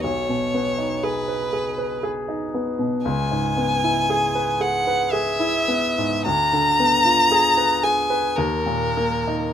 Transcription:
<<
  \new Staff \with { instrumentName = "Violin" } { \time 3/4 \key gis \minor \tempo 4 = 58 cis''4 b'4 r4 | gis''4. fis''8 e''4 | ais''4. aes''8 ais'4 | }
  \new Staff \with { instrumentName = "Grand piano" } { \time 3/4 \key gis \minor b,,16 b,16 b16 dis'16 gis'16 b'16 gis'16 b'16 gis'16 dis'16 b16 b,16 | cis,16 gis,16 b16 e'16 gis'16 b'16 gis'16 b'16 gis'16 e'16 b16 gis,16 | d,16 d16 b16 f'16 aes'16 b'16 aes'16 b'16 dis,16 ais,16 ais16 dis'16 | }
>>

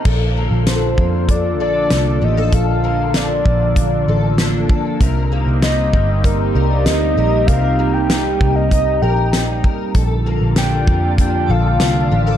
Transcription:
<<
  \new Staff \with { instrumentName = "Soft synth lead" } { \time 4/4 \key bes \major \tempo 4 = 97 r4 c''4 d''8 d''4 ees''8 | f''4 d''2~ d''8 r8 | r4 ees''4 bes'8. d''16 ees''4 | f''8. g''4 ees''16 ees''8 g''4 r8 |
r4 g''4 g''8 f''4. | }
  \new Staff \with { instrumentName = "Synth texture" } { \time 4/4 \key bes \major r1 | r1 | r1 | r1 |
r8 r32 d''2.~ d''16 r32 | }
  \new Staff \with { instrumentName = "Twelve-string acoustic guitar" } { \time 4/4 \key bes \major a'8 bes8 d'8 bes8 d'8 a'4 g'16 a'16 | a'8 bes8 d'8 bes8 d'8 a'8 d'8 a'8 | <c bes'>8 bes8 ees'8 bes8 ees'8 bes'8 ees'8 bes'8 | <c bes'>8 bes8 ees'8 bes8 ees'8 bes'8 ees'8 bes'8 |
a'8 bes8 d'8 bes8 d'8 a'8 d'8 g'16 a'16 | }
  \new Staff \with { instrumentName = "Analog synth pad" } { \time 4/4 \key bes \major <d f bes f' a'>1~ | <d f bes f' a'>1 | <g c' ees' g'>1~ | <g c' ees' g'>1 |
<d f bes f' a'>1 | }
  \new Staff \with { instrumentName = "Picked electric bass" } { \clef bass \time 4/4 \key bes \major bes,,8. bes,,8. f,4 bes,,8 c,8 a,,8 | bes,,4. bes,,4 a,,4 r8 | c,8. c,8. g,,4 c,8 d,8 bes,,8 | c,4. c,4 bes,,4 r8 |
bes,,8. bes,,8. f,4 bes,,8 c,8 a,,8 | }
  \new DrumStaff \with { instrumentName = "Drums" } \drummode { \time 4/4 <cymc bd>4 <hh sn>8 bd8 <hh bd>4 <hh sn>4 | <hh bd>4 <hh sn>8 bd8 <hh bd>4 <hh sn>8 bd8 | <hh bd>4 <hh sn>8 bd8 <hh bd>4 <hh sn>4 | <hh bd>4 <hh sn>8 bd8 <hh bd>4 <hh sn>8 bd8 |
<hh bd>4 <hh sn>8 bd8 <hh bd>4 <hh sn>4 | }
>>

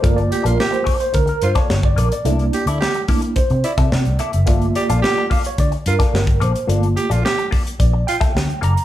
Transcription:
<<
  \new Staff \with { instrumentName = "Tine electric piano" } { \time 4/4 \key g \dorian \tempo 4 = 108 bes'16 d''8 bes'8 c''8 c''16 bes'16 bes'16 c''16 cis''8 d''16 bes'16 d''16~ | d''8. r4 r16 c''8 d''4 e''8~ | e''8 d''4 f''16 cis''16 d''8 bes'4 c''8 | r2 d''8 g''4 bes''8 | }
  \new Staff \with { instrumentName = "Tine electric piano" } { \time 4/4 \key g \dorian <a bes f'>4. r2 r8 | <a bes d' e'>8 r4 <a bes d' e'>8 r2 | <a bes f'>4. r2 r8 | <a bes f'>8 r2. r8 | }
  \new Staff \with { instrumentName = "Clean electric guitar" } { \time 4/4 \key g \dorian <bes f' a' d''>16 r8 <bes f' a' d''>16 r8 <bes f' a' d''>16 r4 <bes f' a' d''>16 r8 <bes f' a' d''>16 r16 | <bes e' a' d''>16 r8 <bes e' a' d''>16 r8 <bes e' a' d''>16 r4 <bes e' a' e''>16 r8 <bes e' a' d''>16 r16 | <bes f' a' d''>16 r8 <bes f' a' d''>16 r8 <bes f' a' d''>16 r4 <bes f' a' d''>16 r8 <bes f' a' d''>16 r16 | <bes f' a' d''>16 r8 <bes f' a' d''>16 r8 <bes f' a' d''>16 r4 <bes f' a' e''>16 r8 <bes f' a' d''>16 r16 | }
  \new Staff \with { instrumentName = "Tenor saxophone" } { \time 4/4 \key g \dorian r8 g'16 f'16 g'8 r4 f'16 r4 r16 | r8 g'16 e'16 g'8 r4 e'16 r4 r16 | r8 g'16 f'16 g'8 r4 f'16 r4 r16 | r8 g'16 f'16 g'8 r4 f'16 r4 r16 | }
  \new Staff \with { instrumentName = "Fingered electric bass" } { \clef bass \time 4/4 \key g \dorian g,,8 r16 bes,,16 r4 d,16 r16 g,16 r16 g,,8 bes,,16 r16 | c,8 r16 d,16 r4 r16 c16 r16 c16 c16 c,16 r16 fis,,16 | g,,8 r16 bes,,16 r4 d,16 r16 g,16 r16 g,,8 bes,,16 r16 | g,,8 r16 bes,,16 r4 bes,,8 r8 d,16 r16 fis,,16 r16 | }
  \new DrumStaff \with { instrumentName = "Drums" } \drummode { \time 4/4 <hh bd>16 hh16 hh16 hh16 sn16 hh16 <hho bd>16 hh16 <hh bd>16 hh16 hh16 <hh bd sn>16 sn16 bd16 hh16 hh16 | hh16 hh16 hh16 hh16 sn16 hh16 <hho bd>16 hh16 <hh bd>16 hh16 hh16 <hh bd>16 sn16 hh16 hh16 hh16 | <hh bd>16 hh16 hh16 hh16 sn8 <hho bd>16 hh16 <hh bd>16 hh16 hh16 <hh bd sn>16 sn16 <hh bd>16 hh16 hh16 | hh16 hh16 hh16 hh16 sn16 hh16 <hho bd>16 hh16 <hh bd>8 hh16 <hh bd sn>16 sn16 hh16 hh16 hh16 | }
>>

